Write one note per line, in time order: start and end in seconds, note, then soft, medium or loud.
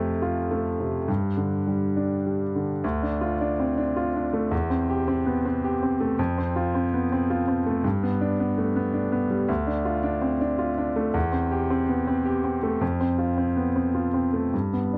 0.00 1.04 F2 medium
0.00 0.10 C3 soft
0.00 0.39 A3 soft
0.22 0.68 F4 soft
0.51 0.97 A3 soft
0.80 1.09 C3 soft
1.08 2.79 G2 soft
1.37 1.84 D3 soft
1.67 2.14 G3 soft
1.96 2.43 D4 soft
2.26 2.72 G3 soft
2.56 2.84 D3 soft
2.84 4.48 D2 medium
3.03 3.33 D4 soft
3.21 3.51 F4 soft
3.41 3.70 D4 soft
3.60 3.78 C4 soft
3.78 4.07 D4 soft
3.96 4.26 F4 soft
4.16 4.45 D4 soft
4.33 4.52 A3 soft
4.51 6.14 E2 medium
4.70 4.99 C4 soft
4.89 5.18 G4 soft
5.08 5.37 C4 soft
5.26 5.44 B3 soft
5.45 5.74 C4 soft
5.64 5.93 G4 soft
5.83 6.11 C4 soft
6.00 6.18 A3 soft
6.19 7.81 F2 medium
6.38 6.67 C4 soft
6.56 6.85 F4 soft
6.75 7.04 C4 soft
6.93 7.11 B3 soft
7.12 7.41 C4 soft
7.30 7.59 F4 soft
7.48 7.77 C4 soft
7.66 7.84 A3 soft
7.84 9.45 G2 medium
8.03 8.32 B3 soft
8.21 8.50 D4 medium
8.40 8.69 B3 medium
8.58 8.76 A3 soft
8.76 9.05 B3 soft
8.94 9.23 D4 soft
9.12 9.42 B3 soft
9.30 9.49 G3 soft
9.48 11.10 D2 medium
9.67 9.97 D4 soft
9.85 10.15 F4 soft
10.03 10.33 D4 medium
10.22 10.40 C4 soft
10.41 10.70 D4 medium
10.59 10.88 F4 soft
10.78 11.07 D4 soft
10.96 11.15 A3 soft
11.14 12.77 E2 medium
11.32 11.62 C4 soft
11.51 11.81 G4 soft
11.70 12.00 C4 soft
11.89 12.07 B3 soft
12.07 12.37 C4 soft
12.25 12.55 G4 soft
12.44 12.74 C4 soft
12.63 12.81 A3 soft
12.81 14.49 F2 medium
13.00 13.30 C4 soft
13.18 13.49 F4 soft
13.38 13.68 C4 soft
13.57 13.75 B3 soft
13.76 14.06 C4 soft
13.95 14.25 F4 soft
14.14 14.45 C4 soft
14.33 14.53 A3 soft
14.54 14.98 G2 soft
14.73 14.98 B3 soft
14.93 14.98 D4 soft